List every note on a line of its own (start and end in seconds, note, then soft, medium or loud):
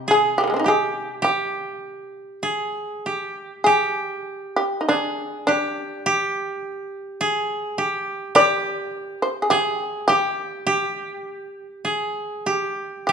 0.00 2.31 C3 soft
0.00 0.14 G4 medium
0.08 0.72 G#4 medium
0.08 0.36 G#4 medium
0.38 0.43 D3 soft
0.38 0.53 G4 medium
0.44 0.47 D#3 soft
0.44 0.60 G3 soft
0.50 0.56 G#3 soft
0.54 0.64 C4 soft
0.54 0.59 D4 soft
0.59 0.73 D#4 soft
0.64 0.68 G4 soft
0.64 1.22 G4 medium
0.64 1.20 G#4 medium
1.22 2.49 G4 medium
1.22 2.39 G4 medium
2.43 3.12 G#4 medium
3.06 3.66 G4 soft
3.64 4.95 G4 medium
3.64 4.53 G#4 medium
4.56 4.78 G4 medium
4.81 4.88 D#4 soft
4.89 5.43 D4 medium
4.89 5.54 G#4 medium
5.47 7.74 D4 medium
5.47 6.06 G4 medium
6.06 7.27 G4 medium
7.21 7.84 G#4 medium
7.78 8.35 G4 medium
8.35 9.57 G4 medium
8.35 9.18 D5 medium
9.22 9.42 C5 medium
9.42 9.50 G#4 soft
9.50 10.04 G4 medium
9.50 10.15 G#4 medium
10.08 12.42 G4 medium
10.08 10.66 G4 medium
10.67 11.91 G4 medium
11.85 12.52 G#4 medium
12.46 13.08 G4 medium
13.07 13.12 G4 medium